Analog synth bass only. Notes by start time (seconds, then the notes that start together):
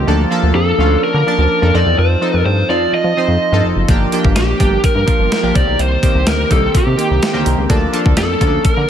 0.07 D2
0.43 D2
0.55 F2
0.78 D2
1.03 D3
1.14 D3
1.38 D2
1.62 F2
1.74 F2
1.86 E2
1.98 F2
2.34 F2
2.45 G2
2.69 F2
2.92 F3
3.04 F3
3.28 F2
3.52 G2
3.64 F1
3.76 F#1
3.89 G1
4.24 G1
4.36 A#1
4.60 G1
4.84 G2
4.95 G2
5.19 G1
5.43 A#1
5.56 C2
5.67 B1
5.79 C2
6.15 C2
6.27 D2
6.51 C2
6.75 C3
6.86 C3
7.11 C2
7.34 D2
7.46 C2
7.58 C#2
7.70 D2
8.06 D2
8.18 F2
8.41 D2
8.65 D3
8.77 D3